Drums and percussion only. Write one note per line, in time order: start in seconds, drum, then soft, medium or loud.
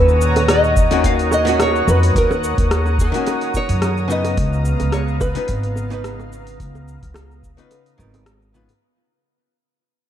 0.09 cabasa soft
0.21 cabasa medium
0.36 open hi-hat soft
0.36 high bongo medium
0.36 cabasa soft
0.48 cross-stick loud
0.48 open hi-hat medium
0.48 cabasa soft
0.64 cabasa soft
0.76 kick loud
0.76 cabasa medium
0.91 open hi-hat soft
0.91 high bongo soft
0.91 cabasa soft
1.04 kick medium
1.04 open hi-hat medium
1.04 cabasa soft
1.19 open hi-hat soft
1.19 cabasa soft
1.31 high bongo medium
1.31 cabasa medium
1.47 open hi-hat soft
1.47 cabasa soft
1.60 cross-stick medium
1.60 open hi-hat medium
1.60 cabasa soft
1.76 cabasa soft
1.88 high bongo medium
1.88 cabasa medium
2.03 open hi-hat soft
2.03 cabasa soft
2.15 kick loud
2.15 open hi-hat medium
2.15 cabasa soft
2.31 high bongo medium
2.31 cabasa soft
2.44 cabasa medium
2.58 kick loud
2.58 open hi-hat soft
2.58 cabasa soft
2.71 cross-stick loud
2.71 open hi-hat medium
2.71 cabasa soft
2.86 high bongo soft
2.86 cabasa soft
2.99 kick loud
2.99 cabasa medium
3.14 open hi-hat soft
3.14 cabasa soft
3.26 open hi-hat medium
3.26 high bongo medium
3.26 cabasa soft
3.41 open hi-hat soft
3.41 cabasa soft
3.54 kick medium
3.54 cabasa medium
3.69 open hi-hat soft
3.69 cabasa soft
3.82 cross-stick medium
3.82 open hi-hat medium
3.82 high bongo medium
3.82 cabasa soft
3.97 cabasa soft
4.10 cabasa medium
4.25 open hi-hat soft
4.25 high bongo medium
4.25 cabasa soft
4.37 kick loud
4.37 open hi-hat medium
4.37 cabasa soft
4.53 cabasa soft
4.65 cabasa medium
4.80 open hi-hat soft
4.80 high bongo medium
4.80 cabasa soft
4.92 cross-stick loud
4.92 open hi-hat medium
4.92 cabasa soft
5.08 cabasa soft
5.21 kick loud
5.21 high bongo medium
5.21 cabasa medium
5.35 open hi-hat soft
5.35 cabasa soft
5.48 kick medium
5.48 open hi-hat medium
5.48 cabasa soft
5.63 open hi-hat soft
5.63 cabasa soft
5.76 high bongo medium
5.76 cabasa medium
5.91 open hi-hat soft
5.91 cabasa soft
6.04 cross-stick loud
6.04 open hi-hat medium
6.04 cabasa soft
6.19 high bongo medium
6.19 cabasa soft
6.33 cabasa medium
6.47 open hi-hat soft
6.47 cabasa soft
6.60 kick loud
6.60 open hi-hat medium
6.60 cabasa soft
6.75 high bongo medium
6.75 cabasa soft
6.88 cabasa medium
7.03 kick loud
7.03 open hi-hat soft
7.03 cabasa soft
7.14 cross-stick loud
7.14 open hi-hat medium
7.14 high bongo medium
7.14 cabasa soft
7.31 cabasa soft
7.43 kick loud
7.43 cabasa medium
7.58 open hi-hat soft
7.58 cabasa soft
7.71 open hi-hat medium
7.71 high bongo medium
7.71 cabasa soft
7.86 open hi-hat soft
7.86 cabasa soft
7.99 kick medium
7.99 cabasa medium
8.14 open hi-hat soft
8.14 high bongo medium
8.14 cabasa soft
8.26 cross-stick loud
8.26 open hi-hat medium
8.26 cabasa soft
8.42 cabasa soft
8.55 cabasa medium
8.69 open hi-hat soft
8.69 high bongo soft
8.69 cabasa soft